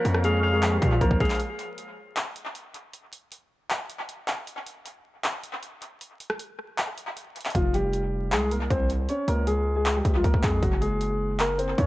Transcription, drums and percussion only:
0.05 closed hi-hat medium
0.14 cross-stick loud
0.24 closed hi-hat medium
0.63 clap loud
0.63 closed hi-hat medium
0.82 kick loud
0.82 closed hi-hat medium
1.01 kick loud
1.01 closed hi-hat medium
1.11 kick loud
1.20 kick loud
1.20 closed hi-hat soft
1.25 closed hi-hat medium
1.30 clap medium
1.30 closed hi-hat medium
1.35 closed hi-hat medium
1.40 closed hi-hat medium
1.59 closed hi-hat medium
1.78 closed hi-hat medium
2.16 clap loud
2.16 closed hi-hat medium
2.36 closed hi-hat medium
2.55 closed hi-hat medium
2.74 closed hi-hat medium
2.93 closed hi-hat medium
3.13 closed hi-hat medium
3.32 closed hi-hat medium
3.70 clap loud
3.70 closed hi-hat medium
3.90 closed hi-hat medium
4.09 closed hi-hat medium
4.28 clap medium
4.28 closed hi-hat medium
4.47 closed hi-hat medium
4.66 closed hi-hat medium
4.85 closed hi-hat medium
5.24 clap loud
5.24 closed hi-hat medium
5.44 closed hi-hat medium
5.63 closed hi-hat medium
5.82 closed hi-hat medium
6.01 closed hi-hat medium
6.20 closed hi-hat medium
6.30 cross-stick loud
6.39 closed hi-hat medium
6.78 clap loud
6.78 closed hi-hat medium
6.98 closed hi-hat medium
7.17 closed hi-hat medium
7.36 closed hi-hat soft
7.41 closed hi-hat medium
7.45 clap medium
7.45 closed hi-hat medium
7.50 closed hi-hat medium
7.55 kick loud
7.55 closed hi-hat medium
7.74 closed hi-hat medium
7.93 closed hi-hat medium
8.32 clap loud
8.32 closed hi-hat medium
8.51 closed hi-hat medium
8.70 kick loud
8.70 closed hi-hat medium
8.90 closed hi-hat medium
9.09 closed hi-hat medium
9.28 closed hi-hat medium
9.47 closed hi-hat medium
9.86 clap loud
9.86 closed hi-hat medium
10.05 kick medium
10.05 closed hi-hat medium
10.24 kick medium
10.24 closed hi-hat medium
10.34 kick loud
10.43 kick loud
10.43 clap loud
10.43 closed hi-hat medium
10.63 kick loud
10.63 closed hi-hat medium
10.82 closed hi-hat medium
11.01 closed hi-hat medium
11.39 clap loud
11.39 closed hi-hat medium
11.59 closed hi-hat medium
11.78 kick loud
11.78 closed hi-hat medium

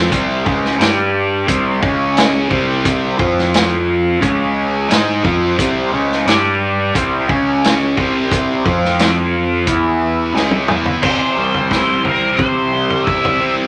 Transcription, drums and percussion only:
0.12 kick loud
0.12 closed hi-hat medium
0.46 kick loud
0.65 snare soft
0.81 snare loud
0.81 closed hi-hat medium
1.48 kick loud
1.48 closed hi-hat medium
1.83 kick loud
2.17 snare loud
2.17 closed hi-hat medium
2.51 kick medium
2.85 kick loud
2.85 closed hi-hat medium
3.19 kick loud
3.38 snare soft
3.54 snare loud
3.54 closed hi-hat medium
4.22 kick loud
4.22 closed hi-hat medium
4.91 snare loud
4.91 closed hi-hat medium
5.25 kick loud
5.59 kick loud
5.59 closed hi-hat medium
6.12 snare soft
6.27 snare loud
6.27 closed hi-hat medium
6.95 kick loud
6.95 closed hi-hat medium
7.29 kick loud
7.64 snare loud
7.64 closed hi-hat medium
7.97 kick loud
8.32 kick loud
8.32 closed hi-hat medium
8.66 kick loud
8.84 snare soft
8.99 snare loud
8.99 closed hi-hat medium
9.67 kick loud
9.67 closed hi-hat medium
10.36 snare medium
10.51 high tom medium
10.68 mid tom medium
10.85 floor tom medium
11.03 kick loud
11.03 floor tom medium
11.03 crash medium
11.54 floor tom medium
11.71 kick loud
11.71 snare medium
12.04 floor tom medium
12.38 kick loud
12.38 floor tom medium
12.90 floor tom medium
13.07 kick loud
13.25 floor tom medium

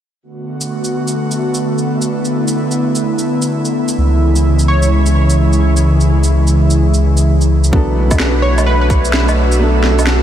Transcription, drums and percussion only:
0.61 shaker medium
0.84 shaker soft
1.08 shaker soft
1.31 shaker soft
1.55 shaker medium
1.78 shaker soft
2.02 shaker medium
2.25 shaker soft
2.48 shaker medium
2.71 shaker soft
2.95 shaker medium
3.19 shaker soft
3.42 shaker medium
3.65 shaker soft
3.88 shaker medium
4.36 shaker medium
4.59 shaker soft
4.83 shaker medium
5.06 shaker soft
5.30 shaker medium
5.53 shaker soft
5.77 shaker medium
6.00 shaker soft
6.24 shaker soft
6.47 shaker soft
6.70 shaker soft
6.94 shaker soft
7.17 shaker medium
7.41 shaker soft
7.64 shaker soft
7.73 kick loud
8.11 kick medium
8.11 low woodblock soft
8.11 shaker medium
8.20 snare loud
8.58 low woodblock medium
8.58 shaker medium
8.90 kick loud
8.90 shaker soft
9.05 shaker medium
9.13 snare loud
9.29 low woodblock medium
9.29 shaker soft
9.52 shaker medium
9.84 snare medium
9.99 low woodblock soft
9.99 shaker medium
10.07 snare loud

